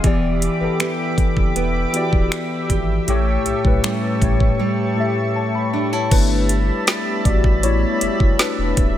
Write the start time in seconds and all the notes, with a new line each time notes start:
Already playing: G#4
0.03 E1 E3 B3 G4 D5 E5 B5 D6, kick, closed hi-hat
0.42 closed hi-hat
0.60 F#1 E3 B3 G4 A4
0.80 B3 D4 G4, finger snap, closed hi-hat
1.18 F#1, kick, closed hi-hat
1.37 F#1, kick
1.56 E1 B3, closed hi-hat
1.93 E3 B3 F#4 D5, closed hi-hat
2.02 G4
2.13 D1, kick
2.32 finger snap, closed hi-hat
2.70 G#1 G4, kick, closed hi-hat
3.07 A1 A2 A3 G4 C#5 A5 C#6, closed hi-hat
3.46 B1, closed hi-hat
3.64 B1 A2 A3 G4 B4, kick
3.83 G3 C#4 E4, finger snap, closed hi-hat
4.20 A1 A2 A3 G4 C#5, kick, closed hi-hat
4.40 kick
4.59 G3
4.96 A2 A3 G4 E5
5.36 C#5 A5
5.55 B5
5.73 D4
5.93 E4 C#5 A5
6.11 G1 G3 A3 B3 D4 E4 B4 E5 A5 B5, kick, closed hi-hat, crash
6.49 closed hi-hat
6.87 snare, closed hi-hat
7.25 A1 F#4 D5, kick, closed hi-hat
7.44 kick
7.63 A3 B3 E4 C#5, closed hi-hat
8.01 F#1, closed hi-hat
8.20 F#1, kick
8.39 D4 B4, snare, closed hi-hat
8.58 E1
8.77 C#1, kick, closed hi-hat